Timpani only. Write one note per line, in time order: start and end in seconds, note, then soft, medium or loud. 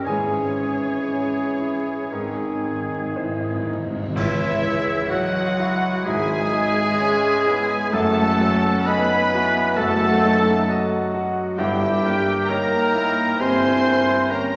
0.06 1.58 G#2 medium
2.13 2.20 G#2 soft
2.21 2.28 G#2 soft
2.29 2.36 G#2 soft
2.37 2.44 G#2 soft
2.45 2.53 G#2 soft
2.54 2.61 G#2 soft
2.63 2.69 G#2 soft
2.70 2.77 G#2 soft
2.78 2.85 G#2 soft
2.86 2.94 G#2 soft
2.95 3.02 G#2 medium
3.03 3.11 G#2 medium
3.12 3.19 G#2 medium
3.20 3.27 G#2 medium
3.28 3.36 G#2 medium
3.37 3.44 G#2 medium
3.45 3.52 G#2 medium
3.53 3.59 G#2 medium
3.60 3.68 G#2 medium
3.69 3.76 G#2 medium
3.77 3.84 G#2 medium
3.85 3.92 G#2 medium
3.93 3.99 G#2 medium
4.00 4.06 G#2 medium
4.07 4.15 G#2 medium
4.16 5.54 C#3 loud